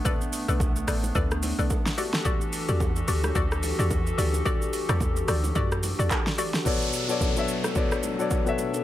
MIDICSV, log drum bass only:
0, 0, Header, 1, 2, 480
1, 0, Start_track
1, 0, Key_signature, 2, "minor"
1, 0, Tempo, 550459
1, 46, Time_signature, 4, 2, 24, 8
1, 7707, End_track
2, 0, Start_track
2, 0, Title_t, "Log drum bass"
2, 0, Program_c, 0, 39
2, 423, Note_on_c, 0, 35, 97
2, 722, Note_off_c, 0, 35, 0
2, 764, Note_on_c, 0, 33, 96
2, 974, Note_off_c, 0, 33, 0
2, 1006, Note_on_c, 0, 38, 95
2, 1337, Note_off_c, 0, 38, 0
2, 1384, Note_on_c, 0, 35, 94
2, 1473, Note_off_c, 0, 35, 0
2, 2345, Note_on_c, 0, 40, 109
2, 2643, Note_off_c, 0, 40, 0
2, 2685, Note_on_c, 0, 38, 93
2, 2895, Note_off_c, 0, 38, 0
2, 2926, Note_on_c, 0, 38, 92
2, 3257, Note_off_c, 0, 38, 0
2, 3305, Note_on_c, 0, 40, 92
2, 3603, Note_off_c, 0, 40, 0
2, 3646, Note_on_c, 0, 38, 89
2, 3856, Note_off_c, 0, 38, 0
2, 4264, Note_on_c, 0, 40, 102
2, 4562, Note_off_c, 0, 40, 0
2, 4605, Note_on_c, 0, 38, 101
2, 4815, Note_off_c, 0, 38, 0
2, 4846, Note_on_c, 0, 42, 92
2, 5177, Note_off_c, 0, 42, 0
2, 5225, Note_on_c, 0, 40, 92
2, 5313, Note_off_c, 0, 40, 0
2, 7707, End_track
0, 0, End_of_file